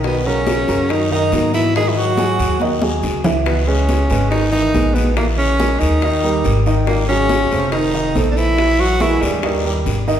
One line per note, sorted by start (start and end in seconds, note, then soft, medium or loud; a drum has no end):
0.00 0.63 B1 medium
0.00 0.18 D#3 medium
0.00 0.18 D#4 medium
0.00 0.18 D#5 medium
0.00 long guiro medium
0.04 0.28 B2 medium
0.04 0.28 B3 medium
0.04 high bongo medium
0.04 high conga soft
0.25 0.92 C#3 medium
0.25 0.61 F#3 medium
0.25 0.92 C#4 medium
0.25 0.61 F#4 medium
0.25 0.61 A#4 medium
0.25 high bongo soft
0.25 high conga soft
0.47 high bongo medium
0.47 high conga medium
0.47 short guiro medium
0.68 1.29 F#2 medium
0.68 1.03 F#3 medium
0.68 1.03 F#4 medium
0.68 1.04 A#4 medium
0.68 high bongo soft
0.68 high conga soft
0.68 short guiro medium
0.89 1.12 D#3 medium
0.89 1.11 D#4 medium
0.89 high bongo medium
0.89 high conga soft
0.89 long guiro medium
1.11 1.29 D#3 medium
1.11 1.52 D#3 medium
1.11 1.29 D#4 medium
1.11 1.51 D#4 medium
1.11 1.29 D#5 medium
1.11 high bongo soft
1.11 high conga soft
1.32 2.33 G#2 medium
1.32 1.68 F#3 medium
1.32 1.68 F#4 medium
1.32 1.68 A#4 medium
1.32 high bongo soft
1.32 low bongo medium
1.32 high conga medium
1.32 short guiro medium
1.54 1.75 E3 medium
1.54 1.74 E4 medium
1.54 high conga medium
1.54 short guiro medium
1.75 2.11 D#3 medium
1.75 1.93 G#3 medium
1.75 2.11 D#4 medium
1.75 1.90 G#4 loud
1.75 2.11 D#5 medium
1.75 high bongo medium
1.75 high conga soft
1.75 long guiro medium
1.89 2.01 E3 medium
1.89 1.99 E4 medium
1.97 2.84 F#3 medium
1.97 2.82 F#4 medium
1.97 high bongo soft
1.97 high conga soft
2.17 2.53 F#3 medium
2.17 2.54 F#4 medium
2.17 2.54 G#4 medium
2.17 high bongo medium
2.17 high conga medium
2.17 short guiro medium
2.39 2.99 D#2 medium
2.39 high bongo soft
2.39 short guiro medium
2.60 2.78 D#3 medium
2.60 2.78 D#4 medium
2.60 2.79 D#5 medium
2.60 high bongo medium
2.60 high conga medium
2.60 long guiro medium
2.82 3.17 F#3 medium
2.82 3.17 F#4 medium
2.82 3.18 G#4 medium
2.82 high conga loud
3.03 4.04 C#2 medium
3.03 low bongo medium
3.03 short guiro medium
3.24 3.60 E3 medium
3.24 3.60 E4 medium
3.24 3.60 E5 medium
3.24 low bongo medium
3.24 low conga medium
3.24 short guiro medium
3.46 3.68 B2 medium
3.46 3.69 B3 medium
3.46 high bongo medium
3.46 high conga soft
3.46 long guiro medium
3.67 4.30 C#3 medium
3.67 4.02 G#3 medium
3.67 4.30 C#4 medium
3.67 4.03 G#4 medium
3.67 4.03 B4 medium
3.67 high bongo soft
3.67 high conga soft
3.89 high bongo medium
3.89 high conga medium
3.89 short guiro medium
4.10 4.70 G#1 medium
4.10 4.45 G#3 medium
4.10 4.45 G#4 medium
4.10 4.46 B4 medium
4.10 high bongo soft
4.10 high conga soft
4.10 short guiro medium
4.30 4.51 D#3 medium
4.30 4.51 D#4 medium
4.30 high bongo medium
4.30 high conga soft
4.30 long guiro medium
4.52 4.96 D#3 medium
4.52 4.70 E3 medium
4.52 4.96 D#4 medium
4.52 4.70 E4 medium
4.52 4.70 E5 medium
4.52 high bongo soft
4.52 high conga soft
4.74 5.75 A#1 medium
4.74 5.09 G#3 medium
4.74 5.09 G#4 medium
4.74 5.10 B4 medium
4.74 high bongo soft
4.74 low bongo medium
4.74 high conga medium
4.74 short guiro medium
4.95 5.15 B2 medium
4.95 5.16 B3 medium
4.95 high conga medium
4.95 short guiro medium
5.15 5.25 A#2 medium
5.15 5.52 E3 medium
5.15 5.26 A#3 medium
5.15 5.52 E4 medium
5.15 5.53 E5 medium
5.15 high bongo medium
5.15 long guiro medium
5.37 5.81 C#3 medium
5.37 5.81 C#4 medium
5.37 high bongo soft
5.37 high conga soft
5.59 5.95 G#3 medium
5.59 5.95 G#4 medium
5.59 5.95 A#4 medium
5.59 high bongo medium
5.59 high conga medium
5.59 short guiro medium
5.79 6.41 D#2 medium
5.79 6.66 D#3 medium
5.79 6.65 D#4 medium
5.79 high bongo soft
5.79 short guiro medium
6.02 6.20 D#3 medium
6.02 6.20 D#4 medium
6.02 6.20 D#5 medium
6.02 high bongo medium
6.02 high conga soft
6.02 long guiro medium
6.23 6.59 G3 medium
6.23 6.59 G4 medium
6.23 6.59 A#4 medium
6.23 high bongo soft
6.23 high conga soft
6.45 7.46 G#1 medium
6.45 high bongo soft
6.45 low bongo medium
6.45 high conga soft
6.45 short guiro medium
6.65 7.01 D#3 medium
6.65 7.01 D#4 medium
6.65 7.02 D#5 medium
6.65 high conga soft
6.65 short guiro medium
6.87 7.07 A#2 medium
6.87 7.07 A#3 medium
6.87 high bongo medium
6.87 high conga soft
6.87 long guiro medium
7.08 7.68 C#3 medium
7.08 7.44 F#3 medium
7.08 7.69 C#4 loud
7.08 7.44 F#4 medium
7.08 7.44 G#4 medium
7.08 high bongo soft
7.08 high conga soft
7.29 high bongo medium
7.29 high conga medium
7.29 short guiro medium
7.51 8.12 F1 medium
7.51 7.86 A3 medium
7.51 7.87 A4 medium
7.51 7.87 C5 medium
7.51 high bongo soft
7.51 high conga soft
7.51 short guiro medium
7.72 8.25 D#3 medium
7.72 8.25 D#4 medium
7.72 high bongo medium
7.72 high conga soft
7.72 long guiro medium
7.94 8.12 D#3 medium
7.94 8.12 D#4 medium
7.94 8.12 D#5 medium
7.94 high bongo soft
7.94 high conga soft
8.15 9.16 A#1 medium
8.15 8.50 A3 medium
8.15 8.50 A4 medium
8.15 8.51 C5 medium
8.15 high bongo soft
8.15 low bongo medium
8.15 high conga medium
8.15 short guiro medium
8.31 8.37 D3 medium
8.31 8.38 D4 medium
8.35 8.81 E3 medium
8.35 8.82 E4 loud
8.35 short guiro medium
8.57 8.93 E3 medium
8.57 8.93 E4 medium
8.57 8.93 E5 medium
8.57 high bongo medium
8.57 high conga soft
8.57 long guiro medium
8.79 9.03 F#3 medium
8.79 9.03 F#4 loud
8.79 high bongo soft
8.79 high conga soft
9.00 9.24 E3 medium
9.00 9.35 G#3 medium
9.00 9.24 E4 loud
9.00 9.35 G#4 medium
9.00 9.36 A#4 medium
9.00 high bongo medium
9.00 high conga medium
9.00 short guiro medium
9.22 9.82 D#2 medium
9.22 9.86 G2 medium
9.22 9.86 G3 medium
9.22 high bongo soft
9.22 short guiro medium
9.43 9.61 D#3 medium
9.43 9.61 D#4 medium
9.43 9.61 D#5 medium
9.43 high bongo medium
9.43 high conga soft
9.43 long guiro medium
9.64 10.00 G3 medium
9.64 10.00 G4 medium
9.64 10.00 A#4 medium
9.64 high bongo soft
9.64 high conga soft
9.85 10.20 G#1 medium
9.85 high bongo soft
9.85 low bongo medium
9.85 high conga soft
9.85 short guiro medium
10.07 10.20 D#3 medium
10.07 10.20 D#4 medium
10.07 10.20 D#5 medium
10.07 high conga soft
10.07 short guiro medium